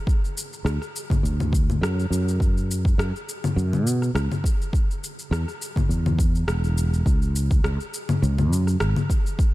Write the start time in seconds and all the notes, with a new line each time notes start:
0.07 kick, shaker
0.25 shaker
0.38 shaker
0.53 shaker
0.65 D2, cross-stick, shaker
0.82 cross-stick, shaker
0.96 shaker
1.10 kick, low conga, shaker
1.23 D2, shaker
1.40 low conga, shaker
1.53 kick, shaker
1.70 low conga, shaker
1.81 F#2, cross-stick, shaker
2.00 shaker
2.10 F#2, shaker
2.29 shaker
2.40 kick, shaker
2.58 shaker
2.71 shaker
2.85 kick, shaker
2.98 F#2, cross-stick, shaker
3.16 shaker
3.29 shaker
3.44 low conga, shaker
3.56 F#2, shaker
3.73 low conga, shaker
3.86 B2, shaker
4.02 cross-stick, shaker
4.15 C#2, cross-stick, shaker
4.32 low conga, shaker
4.44 kick, shaker
4.62 shaker
4.73 kick, shaker
4.91 shaker
5.04 shaker
5.19 shaker
5.31 E2, cross-stick, shaker
5.48 cross-stick, shaker
5.62 shaker
5.76 kick, low conga, shaker
5.89 E2, shaker
6.06 low conga, shaker
6.19 kick, shaker
6.35 shaker
6.47 E1, cross-stick, shaker
6.64 shaker
6.78 shaker
6.94 shaker
7.06 C#2, kick, shaker
7.22 shaker
7.36 shaker
7.51 kick, shaker
7.64 C#2, cross-stick, shaker
7.81 shaker
7.94 shaker
8.09 low conga, shaker
8.22 C#2, shaker
8.38 low conga, shaker
8.51 F#2, shaker
8.67 cross-stick, shaker
8.80 G#1, cross-stick, shaker
8.96 low conga, shaker
9.10 kick, shaker
9.26 shaker
9.39 kick, shaker